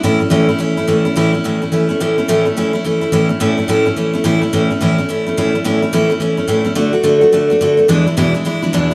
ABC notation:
X:1
M:4/4
L:1/8
Q:"Swing" 1/4=214
K:A
V:1 name="Steel-string acoustic guitar"
[A,,E,A,CE] [A,CE] [A,,E,A,CE] [A,CE] [E,A,CE] [A,CE] [A,,E,A,CE] [A,CE] | [A,,E,A,CE] [A,CE] [A,,E,A,CE] [A,CE] [E,A,CE] [A,CE] [A,,E,A,CE] [A,CE] | [A,,E,A,CE] [A,CE] [A,,E,A,CE] [A,CE] [E,A,CE] [A,CE] [A,,E,A,CE] [A,CE] | [A,,E,A,CE] [A,CE] [A,,E,A,CE] [A,CE] [E,A,CE] [A,CE] [A,,E,A,CE] [A,CE] |
[A,,E,A,CE] [A,CE] [A,,E,A,CE] [A,CE] [E,A,CE] [A,CE] [A,,E,A,CE] [A,CE] | [A,,E,A,CE] [A,CE] [A,,E,A,CE] [A,CE] [E,A,CE] [A,CE] [A,,E,A,CE] [A,CE] | [D,A,DF] [A,DF] [D,A,DF] [A,DF] [D,A,DF] [A,DF] [D,A,DF] [A,DF] | [E,,B,,E,G,DE] [E,G,DE] [E,,B,,E,G,DE] [E,G,DE] [E,G,DE] [E,G,DE] [E,,B,,E,G,DE] E |]